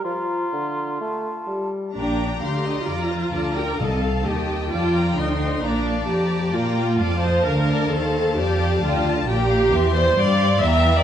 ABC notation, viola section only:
X:1
M:4/4
L:1/16
Q:1/4=131
K:Bb
V:1 name="Viola section"
z16 | D4 G4 F6 B2 | A4 G4 F4 E4 | D4 G4 F6 c2 |
B4 A4 G4 F4 | [K:Gdor] G6 c2 d4 e3 d |]